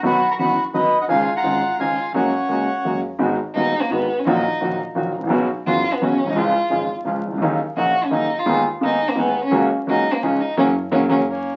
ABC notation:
X:1
M:3/4
L:1/16
Q:1/4=171
K:F#
V:1 name="Bandoneon"
[fb]3 [ac'] [fb]3 z [Bd]3 [df] | [eg]3 [fa]4- [fa] [eg]4 | [cf]8- [cf]2 z2 | z12 |
z12 | z12 | z12 | z12 |
z12 | z12 | z8 [A,C]3 z |]
V:2 name="Violin"
F3 A F3 z B,3 D | E3 E4- E E4 | C8- C2 z2 | z4 D3 A, B,3 C |
D6 z6 | z4 E3 B, C3 D | E6 z6 | z4 F3 C D3 E- |
E z3 D3 A, B,3 C- | C z3 D3 A, C2 D2 | C2 z2 C2 C2 z4 |]
V:3 name="Bandoneon"
[F,B,D]2 z2 [F,B,D]2 z2 [F,B,D]2 z2 | [E,CD]2 z2 [E,CD]2 z2 [E,CD]2 z2 | [G,A,F]2 z2 [G,A,F]2 z2 [G,A,F]2 z2 | [G,B,F]2 z2 [G,B,F]2 z2 [G,B,F]2 z2 |
[A,DF]2 z2 [A,DF]2 z2 [A,DF]2 z2 | [B,CF]2 z2 [B,CF]2 z2 [B,CF]2 z2 | [G,CE]2 z2 [G,CE]2 z2 [G,CE]2 z2 | [F,CD]2 z2 [F,CD]2 z2 [F,CD]2 z2 |
[G,B,D]2 z2 [G,B,D]2 z2 [G,B,D]2 z2 | [A,CF]2 z2 [A,CF]2 z2 [CDE]2 z2 | [A,CF]2 z2 [A,CF]2 [A,CF]2 z4 |]
V:4 name="Grand piano" clef=bass
[B,,,B,,D,F,B,F]2 z2 [F,,,F,,D,F,B,F]2 z2 [B,,,B,,D,F,B,F]2 z2 | [C,,C,D,G,CE]2 z2 [G,,,G,,D,G,CE]2 z2 [C,,C,D,G,CE]2 z2 | [F,,C,F,G,A,F]2 z2 [C,,C,G,A,F]2 z2 [F,,C,F,G,A,F]2 z2 | [G,,,G,,D,G,B,F]2 z2 [D,,,D,,D,G,B,F]2 z2 [G,,,G,,D,G,B,F]2 z2 |
[A,,,A,,D,F,A,F]2 z2 [A,,,A,,D,F,A,F]2 z2 [A,,,A,,D,F,A,F]2 z/2 G,,,/2 =A,,,/2 ^A,,,/2 | [B,,,B,,C,F,B,F]2 z2 [F,,,F,,C,F,B,F]2 z2 [B,,,B,,C,F,B,F]2 z/2 A,,,/2 B,,,/2 ^B,,,/2 | [C,,C,E,G,E]2 z2 [G,,,G,,C,E,G,E]2 z2 [C,,C,E,G,E]2 z/2 ^B,,,/2 C,,/2 =D,,/2 | [D,,C,D,F,A,D]2 z2 [A,,,A,,C,F,A,D]2 z2 [D,,C,D,F,A,D]2 z2 |
[D,,D,G,B,G]2 z2 [D,,D,G,B,G]2 z2 [D,,D,G,B,G]2 z2 | [C,,C,F,A,F]2 z2 [C,,C,F,A,F]2 z2 [C,,C,E,G,D]2 z2 | [C,F,A,]2 z2 [C,F,A,]2 [C,F,A,]2 z4 |]
V:5 name="Double bass" clef=bass
B,,,2 z2 F,,,2 z2 B,,,2 z2 | C,,2 z2 G,,,2 z2 C,,2 z2 | F,,,2 z2 C,,2 z2 F,,,2 z2 | G,,,2 z2 D,,2 z2 G,,,2 z2 |
A,,,2 z2 A,,,2 z2 A,,,2 =A,,,2 | B,,,2 z2 F,,,2 z2 B,,,2 B,,,2 | C,,2 z2 G,,,2 z2 C,,2 C,,2 | D,,2 z2 A,,,2 z2 D,,2 z2 |
D,,2 z2 D,,2 z2 D,,2 z2 | C,,2 z2 C,,2 z2 C,,2 z2 | F,,,2 z2 F,,,2 F,,,2 z4 |]